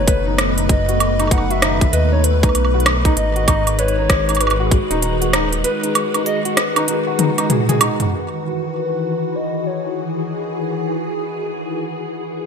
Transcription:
0.00 1.86 F#1 loud
0.00 3.17 B2 medium
0.00 12.46 D#3 medium
0.00 3.17 A3 medium
0.00 0.23 C#4 medium
0.00 10.13 B4 medium
0.00 0.39 C#5 loud
0.07 0.22 B4 loud
0.07 kick loud
0.07 closed hi-hat medium
0.27 0.33 D#4 medium
0.38 cross-stick loud
0.38 closed hi-hat medium
0.58 0.61 D#4 medium
0.58 closed hi-hat medium
0.69 1.33 D#5 loud
0.69 kick loud
0.69 closed hi-hat medium
0.89 0.97 F#4 medium
0.89 closed hi-hat soft
1.00 closed hi-hat medium
1.00 high woodblock medium
1.19 1.25 D#4 loud
1.19 closed hi-hat soft
1.19 high woodblock soft
1.27 1.41 D#4 medium
1.27 kick loud
1.27 closed hi-hat medium
1.27 high woodblock soft
1.32 1.52 F#5 loud
1.38 high woodblock soft
1.50 1.59 F#4 medium
1.50 1.95 E5 loud
1.50 closed hi-hat soft
1.62 1.77 D#4 loud
1.62 cross-stick loud
1.62 closed hi-hat medium
1.81 kick loud
1.81 closed hi-hat medium
1.93 2.48 D#2 loud
1.93 2.08 B4 loud
1.93 2.12 D#5 loud
1.93 closed hi-hat medium
2.12 2.18 D#4 medium
2.12 2.25 C#5 medium
2.24 2.86 B4 medium
2.24 closed hi-hat medium
2.43 2.47 D#4 medium
2.43 kick loud
2.43 closed hi-hat soft
2.43 high woodblock soft
2.49 high woodblock soft
2.55 3.10 B1 loud
2.55 closed hi-hat medium
2.55 high woodblock soft
2.65 high woodblock soft
2.74 2.83 F#4 medium
2.80 closed hi-hat soft
2.86 cross-stick loud
2.86 closed hi-hat medium
2.86 high woodblock medium
3.05 3.11 D#4 loud
3.05 kick loud
3.05 closed hi-hat medium
3.17 4.79 G#1 loud
3.17 8.12 G#3 medium
3.17 3.80 D#5 loud
3.17 closed hi-hat medium
3.36 3.45 F#4 medium
3.36 closed hi-hat soft
3.48 3.62 D#4 loud
3.48 kick loud
3.48 closed hi-hat medium
3.48 high woodblock medium
3.67 12.46 F#4 medium
3.67 closed hi-hat medium
3.67 high woodblock soft
3.79 3.93 B4 loud
3.79 4.42 C#5 loud
3.79 closed hi-hat medium
3.88 closed hi-hat soft
3.98 4.04 D#4 medium
4.10 kick loud
4.10 cross-stick loud
4.10 closed hi-hat medium
4.29 4.32 D#4 medium
4.29 closed hi-hat soft
4.29 high woodblock soft
4.35 closed hi-hat soft
4.35 high woodblock soft
4.40 4.68 B4 loud
4.40 closed hi-hat medium
4.40 high woodblock soft
4.47 closed hi-hat soft
4.47 high woodblock soft
4.51 high woodblock medium
4.60 4.69 F#4 medium
4.66 4.73 G#4 medium
4.71 5.33 F#4 medium
4.71 kick loud
4.71 closed hi-hat medium
4.91 5.64 D#1 loud
4.91 4.97 D#4 loud
4.91 closed hi-hat medium
5.02 5.12 D#4 medium
5.02 closed hi-hat medium
5.21 5.30 F#4 medium
5.21 closed hi-hat soft
5.33 5.48 D#4 loud
5.33 cross-stick loud
5.33 closed hi-hat medium
5.53 closed hi-hat medium
5.64 5.79 B4 loud
5.64 6.22 B4 loud
5.64 closed hi-hat medium
5.83 5.89 D#4 medium
5.83 closed hi-hat soft
5.95 closed hi-hat medium
5.95 high woodblock medium
6.14 6.18 D#4 medium
6.14 closed hi-hat medium
6.14 high woodblock soft
6.26 6.40 D#5 loud
6.26 closed hi-hat medium
6.45 6.54 F#4 medium
6.45 closed hi-hat soft
6.57 7.77 B4 loud
6.57 cross-stick loud
6.57 closed hi-hat medium
6.76 6.82 D#4 loud
6.76 closed hi-hat medium
6.76 high woodblock medium
6.88 6.98 D#4 medium
6.88 closed hi-hat medium
7.07 7.16 F#4 medium
7.19 7.29 D#4 medium
7.19 closed hi-hat medium
7.19 high tom medium
7.38 7.44 D#4 loud
7.38 closed hi-hat medium
7.38 high woodblock soft
7.50 7.56 G#4 medium
7.50 closed hi-hat medium
7.50 mid tom medium
7.69 7.78 G#4 loud
7.69 closed hi-hat soft
7.69 mid tom medium
7.81 7.95 D#4 loud
7.81 closed hi-hat medium
7.81 high woodblock medium
8.00 8.06 D#4 medium
8.00 closed hi-hat medium
8.00 mid tom medium
8.12 12.46 E3 medium
8.12 9.37 B4 medium
9.22 12.46 G#4 medium
9.35 9.68 D#5 loud
9.66 10.28 C#5 medium

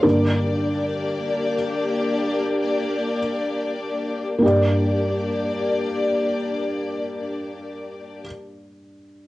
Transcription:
0.03 1.54 G2 soft
0.03 1.54 D3 soft
0.03 4.38 A#3 medium
0.03 1.54 A#3 soft
0.03 4.39 D4 medium
0.03 4.39 G4 medium
0.03 3.19 A#4 medium
0.03 4.39 D5 medium
4.39 8.23 G2 soft
4.39 8.20 A#3 medium
4.39 8.23 A#3 soft
4.39 8.23 D4 soft
4.39 8.23 G4 soft
4.39 8.23 D5 medium
4.46 8.27 D5 medium

